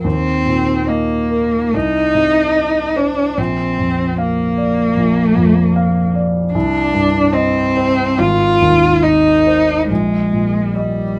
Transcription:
0.04 grand piano D#2, cello C4
0.46 grand piano A#2
0.87 cello A#3, grand piano D#5
1.30 grand piano A#4
1.74 grand piano C2, cello D#4
2.15 grand piano C3
2.56 grand piano D#5
2.96 cello D4, grand piano C5
3.37 grand piano A#1, cello C4
3.79 grand piano F2
4.17 cello A#3, grand piano F5
4.58 grand piano D5
4.97 grand piano A#1
5.36 grand piano F2
5.76 grand piano F5
6.15 grand piano D5
6.53 grand piano C2, cello D4
6.94 grand piano G2
7.33 cello C4, grand piano D#5
7.77 grand piano C5
8.19 grand piano G#1, cello F4
8.62 grand piano D#2
9.03 cello D#4, grand piano D#5
9.47 grand piano C5
9.88 grand piano A#1, cello G#3
10.32 grand piano A#2
10.74 cello G3, grand piano D#5

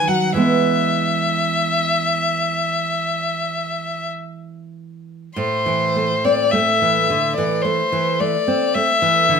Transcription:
Already playing: nylon-string guitar D#3
0.08 nylon-string guitar F#3, violin F#5
0.34 nylon-string guitar E3 G#3 B3, violin E5
5.36 nylon-string guitar A2, violin C5
5.66 nylon-string guitar E3
5.96 nylon-string guitar A3
6.25 nylon-string guitar C4, violin D5
6.52 nylon-string guitar A3, violin E5
6.82 nylon-string guitar E3
7.10 nylon-string guitar D3
7.36 nylon-string guitar E3, violin D5
7.62 nylon-string guitar A3, violin C5
7.92 nylon-string guitar E3
8.20 nylon-string guitar A3, violin D5
8.48 nylon-string guitar C4
8.75 nylon-string guitar A3, violin E5
9.02 nylon-string guitar E3
9.29 nylon-string guitar D3

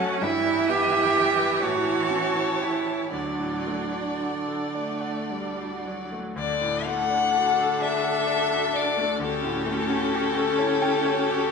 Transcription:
Already playing: grand piano F#2 F#3 A3 A4, viola F#3, cello C#4, violin F#5 A5
0.00 grand piano F#4
0.21 grand piano G2, viola E3, cello E4, violin E5 G5
0.45 grand piano G3
0.68 grand piano B3, cello G4
0.91 grand piano E4
1.14 grand piano G4
1.38 grand piano B4
1.61 grand piano A2, cello F#4, violin C#5 A5
1.87 grand piano E3
2.10 grand piano C#4
2.36 grand piano E4
2.60 cello E4, grand piano G4
2.86 grand piano C#5
3.12 grand piano D2, viola F#3, cello D4, violin D5 F#5
3.39 grand piano A2
3.67 grand piano A3
3.92 grand piano D4
4.18 grand piano F#4
4.48 grand piano A4
4.75 viola A3, grand piano D5
5.01 grand piano F#5
5.30 viola G3, grand piano D5
5.58 grand piano F#4
5.86 viola F#3, grand piano D4
6.12 grand piano A3
6.36 grand piano D2, viola D4, violin A4 D5
6.61 grand piano A2
6.86 grand piano A3, violin F#5
7.10 grand piano D4
7.34 grand piano F#4
7.59 grand piano A4
7.81 cello A4, grand piano D5, violin E5
8.04 grand piano F#5
8.27 grand piano D5
8.51 grand piano F#4
8.73 grand piano D4, violin D5
8.97 grand piano A3
9.20 grand piano D2, cello F#4, violin G4 A4
9.24 viola C#4
9.44 grand piano A2
9.66 grand piano A3
9.90 grand piano C#4
10.15 grand piano G4
10.37 grand piano A4
10.59 cello E4, grand piano C#5
10.82 grand piano G5
11.05 cello F#4, grand piano C#5
11.30 grand piano G4

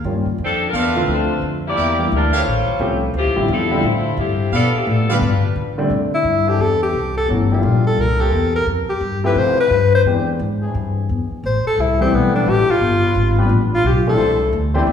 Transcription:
0.04 upright bass G2, grand piano D#3 G3 A#3 C#4 F4
0.26 muted upright bass stroke
0.38 upright bass F2
0.43 saxophone section F3 C4 D4 A4
0.69 saxophone section A#4
0.73 upright bass E2, saxophone section A3 D4 F4 B4, trumpet section C4 A4 D5 F5
0.96 grand piano D3 F3 A3 C4 F4
1.07 upright bass D2
1.11 saxophone section A3 D4 F4 C5
1.42 upright bass F2
1.67 saxophone section A#3 E4 G4 D5
1.77 upright bass E2, trumpet section G4 A#4 D5 E5
1.99 grand piano E3 G3 A#3 D4 G4
2.12 upright bass D2, saxophone section G3 D4 E4 A#4
2.33 saxophone section G3 F4 C5 C#5, trumpet section G4 A4 C#5 F5
2.46 upright bass A1
2.68 muted upright bass stroke
2.79 upright bass C2, grand piano F3 A3 C4 C#4 G4
3.14 upright bass D2, saxophone section F3 C4 E4 G4
3.25 upright bass C2
3.36 upright bass A1, grand piano D3 F3 G3 C4 E4
3.48 upright bass E2, saxophone section C4 E4 F4 A4
3.71 grand piano D3 F3 G3 C4 E4
3.83 upright bass A2, saxophone section A3 E4 F4 C5
4.17 upright bass G2, saxophone section F3 C4 E4 G4
4.52 upright bass B2, saxophone section F3 B3 D4 A4, trumpet section A4 B4 D5 F5
4.74 saxophone section E3 A3 C4 G4, muted upright bass stroke
4.86 upright bass A2, saxophone section F3 B3 D4 A4
5.09 grand piano D3 F3 G3 B3 F4, saxophone section G3 D4 F4 B4, trumpet section G4 B4 D5 F5
5.21 upright bass G2
5.44 muted upright bass stroke
5.56 upright bass D3
5.78 grand piano D3 G3 A3 C4 D4
5.90 upright bass C3
6.14 alto saxophone E4
6.24 upright bass G2
6.46 trombone section E3 C4 D4 A4, alto saxophone G4
6.58 upright bass E2, alto saxophone A4
6.83 alto saxophone G4
6.93 upright bass C2
7.17 alto saxophone A4
7.28 upright bass G1, grand piano E3 F#3 A3 C#4 F#4
7.51 grand piano F3 G3 A#3 D4 G4, alto saxophone F4
7.63 upright bass A#1
7.87 alto saxophone A4
7.98 upright bass C2, alto saxophone A#4
8.19 trombone section E3 A#3 C4 G4, alto saxophone A4
8.32 upright bass E2
8.56 alto saxophone A#4
8.66 upright bass F2
8.88 alto saxophone G4, muted upright bass stroke
9.01 upright bass G2
9.24 grand piano F3 A3 C4 E4 G4, trombone section F3 A3 E4 G4, alto saxophone B4
9.35 upright bass C3, alto saxophone C5
9.60 alto saxophone B4
9.70 upright bass G2
9.95 alto saxophone C5
10.05 upright bass E2, grand piano E3 G#3 C4 D4 G4
10.39 upright bass G#2
10.62 trombone section E3 C4 D4 G#4
10.75 upright bass G2
11.09 upright bass E2
11.31 muted upright bass stroke
11.44 upright bass A1, alto saxophone C5
11.65 alto saxophone A4, muted upright bass stroke
11.77 upright bass C2, alto saxophone E4
12.00 grand piano E3 G3 A3 C4 G4, alto saxophone C4
12.12 upright bass B1, alto saxophone B3
12.33 trombone section G3 C4 E4 A4, alto saxophone D4
12.46 upright bass A1, alto saxophone G4
12.68 alto saxophone F4, muted upright bass stroke
12.80 upright bass G1
13.03 trombone section G3 D4 F4 B4
13.15 upright bass G#1
13.38 grand piano F3 G3 B3 D4 G4, trombone section G3 D4 F4 B4
13.49 upright bass A1
13.74 alto saxophone F4
13.83 upright bass B1
13.87 alto saxophone G4
14.07 grand piano E3 A3 C4 D4 G4, alto saxophone A4
14.17 upright bass C2, trombone section A3 D4 E4 C5
14.53 upright bass D2
14.74 grand piano E3 A3 C4 D4 G4, trombone section A3 D4 E4 C5
14.87 upright bass E2

